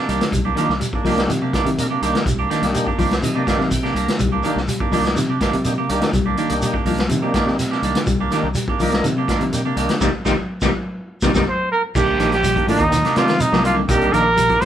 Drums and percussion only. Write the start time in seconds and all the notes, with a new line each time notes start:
0.09 closed hi-hat, shekere
0.21 snare, closed hi-hat
0.32 kick, closed hi-hat, shekere
0.57 closed hi-hat, shekere
0.70 snare
0.81 closed hi-hat, shekere
0.93 kick
1.05 open hi-hat, shekere
1.18 snare, closed hi-hat
1.30 closed hi-hat, shekere
1.53 kick, snare, closed hi-hat, shekere
1.66 closed hi-hat
1.78 closed hi-hat, shekere
2.02 closed hi-hat, shekere
2.15 snare, closed hi-hat
2.26 kick, closed hi-hat, shekere
2.51 snare, closed hi-hat, shekere
2.63 snare, closed hi-hat
2.74 closed hi-hat, shekere
2.87 kick
2.99 kick, open hi-hat, shekere
3.11 snare, closed hi-hat
3.23 closed hi-hat, shekere
3.47 kick, snare, closed hi-hat, shekere
3.60 snare
3.71 kick, closed hi-hat, shekere
3.85 snare
3.96 closed hi-hat, shekere
4.08 snare, closed hi-hat
4.19 kick, closed hi-hat, shekere
4.43 closed hi-hat, shekere
4.57 snare
4.68 closed hi-hat, shekere
4.80 kick
4.92 open hi-hat, shekere
5.05 snare, closed hi-hat
5.16 snare, closed hi-hat, shekere
5.41 kick, snare, closed hi-hat, shekere
5.53 closed hi-hat
5.64 closed hi-hat, shekere
5.89 closed hi-hat, shekere
6.01 snare, closed hi-hat
6.13 kick, closed hi-hat, shekere
6.37 closed hi-hat, shekere
6.49 closed hi-hat
6.62 closed hi-hat, shekere
6.74 kick
6.86 open hi-hat, shekere
6.98 snare, closed hi-hat
7.09 closed hi-hat, shekere
7.34 kick, snare, closed hi-hat, shekere
7.47 snare
7.59 snare, closed hi-hat, shekere
7.72 snare
7.83 closed hi-hat, shekere
7.95 snare, closed hi-hat
8.06 kick, closed hi-hat, shekere
8.31 snare, closed hi-hat, shekere
8.55 closed hi-hat, shekere
8.68 kick
8.80 open hi-hat, shekere
8.93 snare, closed hi-hat
9.04 closed hi-hat, shekere
9.28 kick, snare, closed hi-hat, shekere
9.41 closed hi-hat
9.53 closed hi-hat, shekere
9.77 closed hi-hat, shekere
9.89 snare, closed hi-hat
10.01 kick, snare, shekere
10.25 kick, snare, shekere
10.61 kick, snare, shekere
11.22 kick, snare, shekere
11.35 kick, snare, shekere
11.95 kick, crash, shekere
12.20 snare, closed hi-hat, shekere
12.32 snare, closed hi-hat
12.44 closed hi-hat, shekere
12.56 kick, closed hi-hat
12.68 open hi-hat, shekere
12.80 kick, closed hi-hat
12.92 snare, closed hi-hat, shekere
13.05 snare, closed hi-hat
13.16 snare, closed hi-hat, shekere
13.28 snare, closed hi-hat
13.40 closed hi-hat, shekere
13.53 snare
13.65 closed hi-hat, shekere
13.89 kick, closed hi-hat, shekere
14.01 closed hi-hat
14.14 closed hi-hat, shekere
14.37 closed hi-hat, shekere
14.49 kick, closed hi-hat
14.61 open hi-hat, shekere